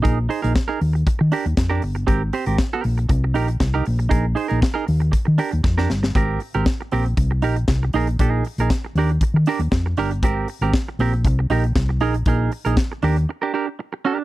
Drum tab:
HH |x-oxx-oxx-oxx-ox|x-oxx-oxx-oxx-ox|x-oxx-oxx-ox----|x-oxx-oxx-oxx-ox|
SD |----o-------o---|----o-------o---|----o-------oooo|----o-------o---|
BD |o---o---o---o---|o---o---o---o---|o---o---o---o---|o---o---o---o---|

HH |x-oxx-oxx-oxx-ox|x-oxx-oxx-oxx-ox|x-oxx-ox--------|
SD |----o-------o---|----o-------o---|----o-----------|
BD |o---o---o---o---|o---o---o---o---|o---o-----------|